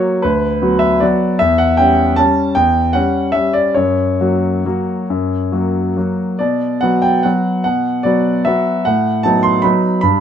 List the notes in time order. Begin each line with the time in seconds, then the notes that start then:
Already playing: F#3 A#3 F#4 C#5
0.22 D2 B4
0.62 F#3 B3 F#4
0.79 E5
1.00 F#3 B3 F#4 D5
1.39 E2 E5
1.58 F#5
1.77 G3 C#4 G5
2.16 G3 C#4 A5
2.55 E2 G5
2.93 G3 C#4 F#5
3.32 G3 C#4 E5
3.53 D5
3.75 F#2 C#5
4.20 F#3 A#3 F#4
4.65 F#3 A#3 F#4
5.10 F#2
5.52 F#3 A#3 F#4
5.97 F#3 A#3 F#4
6.39 B2 D5
6.81 F#3 B3 F#4 F#5
7.02 G5
7.23 F#3 B3 F#4 F#5
7.64 B2 F#5
8.03 F#3 B3 F#4 D5
8.45 F#3 B3 F#4 E5
8.85 A2 F#5
9.23 F#3 B3 D#4 A5
9.43 C6
9.62 F#3 B3 D#4 B5
10.01 G2 B5